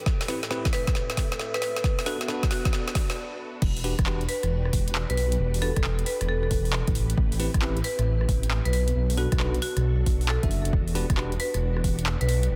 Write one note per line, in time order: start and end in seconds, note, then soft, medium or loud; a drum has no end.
0.00 1.60 A2 medium
0.00 1.60 C4 medium
0.00 0.57 E4 medium
0.00 1.60 E4 medium
0.00 1.58 G4 medium
0.00 2.45 A4 medium
0.00 1.58 B4 medium
0.06 kick loud
0.06 snare medium
0.21 snare medium
0.21 open hi-hat medium
0.28 0.39 C4 medium
0.28 0.38 E4 medium
0.28 0.38 G4 medium
0.28 0.39 B4 medium
0.28 snare medium
0.28 open hi-hat loud
0.43 snare medium
0.43 closed hi-hat medium
0.49 0.66 C4 medium
0.49 0.66 E4 medium
0.49 0.66 G4 medium
0.49 0.66 B4 loud
0.49 2.45 E5 medium
0.49 snare loud
0.65 kick loud
0.65 snare medium
0.65 closed hi-hat medium
0.73 0.91 B4 medium
0.73 snare medium
0.73 open hi-hat loud
0.87 kick loud
0.87 snare medium
0.87 closed hi-hat medium
0.95 snare loud
1.10 snare medium
1.10 closed hi-hat medium
1.17 kick medium
1.17 snare loud
1.17 open hi-hat loud
1.32 snare medium
1.32 closed hi-hat medium
1.40 snare medium
1.54 1.60 B4 medium
1.54 snare medium
1.54 closed hi-hat soft
1.61 3.17 B3 medium
1.61 3.60 D4 medium
1.61 3.60 F#4 medium
1.61 3.60 A4 medium
1.61 3.60 B4 medium
1.61 1.80 B4 medium
1.61 snare loud
1.61 open hi-hat loud
1.76 snare medium
1.76 closed hi-hat medium
1.84 kick loud
1.84 snare loud
1.99 snare medium
1.99 open hi-hat medium
2.03 2.16 D4 medium
2.03 2.16 F#4 medium
2.03 2.24 F#4 loud
2.03 2.16 A4 medium
2.03 3.18 B4 medium
2.03 2.16 B4 medium
2.03 snare loud
2.03 open hi-hat loud
2.11 3.17 F#4 medium
2.21 snare medium
2.21 closed hi-hat medium
2.28 2.44 D4 medium
2.28 2.44 F#4 medium
2.28 2.44 A4 medium
2.28 2.44 B4 loud
2.28 snare loud
2.43 kick loud
2.43 snare medium
2.43 closed hi-hat medium
2.51 2.69 F#4 medium
2.51 3.17 D5 medium
2.51 snare loud
2.51 open hi-hat loud
2.65 kick loud
2.65 snare medium
2.65 closed hi-hat medium
2.73 snare loud
2.88 snare medium
2.88 closed hi-hat medium
2.95 kick loud
2.95 snare loud
2.95 open hi-hat loud
3.10 snare medium
3.10 open hi-hat medium
3.62 3.93 E1 loud
3.62 6.92 D4 medium
3.62 6.92 F#4 medium
3.62 8.69 G4 medium
3.62 8.69 B4 medium
3.62 kick loud
3.62 crash loud
3.77 open hi-hat medium
3.84 3.94 D4 medium
3.84 3.94 F#4 medium
3.84 3.94 G4 medium
3.84 3.94 B4 medium
3.84 open hi-hat loud
3.99 4.26 E1 medium
3.99 kick loud
3.99 cross-stick medium
3.99 closed hi-hat medium
4.06 4.22 D4 medium
4.06 4.22 F#4 medium
4.06 4.22 G4 medium
4.06 4.22 B4 loud
4.06 clap loud
4.21 closed hi-hat soft
4.29 4.47 B4 medium
4.29 open hi-hat loud
4.43 4.70 E1 medium
4.43 cross-stick soft
4.43 closed hi-hat medium
4.65 cross-stick soft
4.73 5.04 E1 medium
4.73 kick medium
4.73 open hi-hat loud
4.88 closed hi-hat medium
4.95 clap loud
5.10 5.37 B1 medium
5.10 5.16 B4 medium
5.10 closed hi-hat medium
5.17 5.35 B4 medium
5.17 open hi-hat loud
5.32 closed hi-hat medium
5.40 5.71 E1 loud
5.54 open hi-hat medium
5.62 5.72 D4 medium
5.62 5.72 F#4 medium
5.62 5.72 G4 medium
5.62 5.80 A4 loud
5.62 5.72 B4 medium
5.62 open hi-hat loud
5.76 6.04 E1 loud
5.76 kick loud
5.76 cross-stick medium
5.76 closed hi-hat medium
5.84 clap loud
5.99 closed hi-hat soft
6.06 6.27 B4 medium
6.06 open hi-hat loud
6.21 6.48 E1 medium
6.21 cross-stick soft
6.21 closed hi-hat medium
6.29 6.38 A4 medium
6.43 6.48 A4 medium
6.51 6.82 E1 medium
6.51 kick medium
6.51 open hi-hat loud
6.65 open hi-hat medium
6.73 clap loud
6.87 7.15 A1 medium
6.87 kick loud
6.87 closed hi-hat medium
6.95 8.71 C4 medium
6.95 8.71 E4 medium
6.95 open hi-hat loud
7.10 closed hi-hat medium
7.18 7.49 A1 loud
7.18 kick loud
7.32 open hi-hat medium
7.40 7.50 C4 medium
7.40 7.50 E4 medium
7.40 7.50 G4 medium
7.40 7.50 B4 medium
7.40 open hi-hat loud
7.54 7.81 A1 loud
7.54 kick loud
7.54 cross-stick medium
7.54 closed hi-hat medium
7.62 7.77 C4 medium
7.62 7.77 E4 medium
7.62 7.77 G4 medium
7.62 7.77 B4 loud
7.62 clap loud
7.77 closed hi-hat soft
7.84 8.02 B4 medium
7.84 open hi-hat loud
7.99 8.26 A1 medium
7.99 cross-stick soft
7.99 closed hi-hat medium
8.21 cross-stick soft
8.29 8.60 A1 medium
8.29 kick medium
8.29 open hi-hat loud
8.43 closed hi-hat medium
8.51 clap loud
8.65 8.92 B1 medium
8.65 8.72 B4 medium
8.65 closed hi-hat medium
8.73 12.56 B3 medium
8.73 12.56 D4 medium
8.73 12.56 F#4 medium
8.73 10.71 A4 medium
8.73 8.91 B4 medium
8.73 open hi-hat loud
8.88 closed hi-hat medium
8.95 9.27 B1 loud
9.10 open hi-hat medium
9.17 9.27 D4 medium
9.17 9.27 F#4 medium
9.17 9.36 F#4 loud
9.17 9.27 A4 medium
9.17 9.27 B4 medium
9.17 open hi-hat loud
9.32 9.59 B1 loud
9.32 kick loud
9.32 cross-stick medium
9.32 closed hi-hat medium
9.40 9.55 D4 medium
9.40 9.55 F#4 medium
9.40 9.55 A4 medium
9.40 9.55 B4 loud
9.40 clap loud
9.54 closed hi-hat soft
9.62 9.80 F#4 medium
9.62 open hi-hat medium
9.77 10.04 B1 medium
9.77 cross-stick soft
9.77 closed hi-hat medium
10.06 10.38 B1 medium
10.06 kick medium
10.06 open hi-hat loud
10.21 open hi-hat medium
10.29 10.65 A4 medium
10.29 clap loud
10.43 10.70 F#1 medium
10.43 10.72 D4 medium
10.43 10.72 F#4 medium
10.43 10.72 A4 medium
10.43 10.72 E5 medium
10.43 kick loud
10.43 closed hi-hat soft
10.51 open hi-hat loud
10.65 closed hi-hat medium
10.73 11.04 E1 loud
10.73 12.56 G4 medium
10.73 kick loud
10.88 open hi-hat medium
10.95 11.05 D4 medium
10.95 11.05 F#4 medium
10.95 11.05 G4 medium
10.95 11.05 B4 medium
10.95 open hi-hat loud
11.10 11.37 E1 loud
11.10 kick loud
11.10 cross-stick medium
11.10 closed hi-hat medium
11.17 11.33 D4 medium
11.17 11.33 F#4 medium
11.17 11.33 G4 medium
11.17 11.33 B4 loud
11.17 clap loud
11.32 closed hi-hat soft
11.40 11.58 B4 medium
11.40 open hi-hat loud
11.54 11.81 E1 medium
11.54 cross-stick soft
11.54 closed hi-hat medium
11.77 cross-stick soft
11.84 12.16 E1 medium
11.84 kick medium
11.84 open hi-hat loud
11.99 closed hi-hat medium
12.06 clap loud
12.21 12.48 B1 loud
12.21 12.27 B4 medium
12.21 closed hi-hat medium
12.28 12.47 B4 medium
12.28 open hi-hat loud
12.43 closed hi-hat medium
12.51 12.56 E1 loud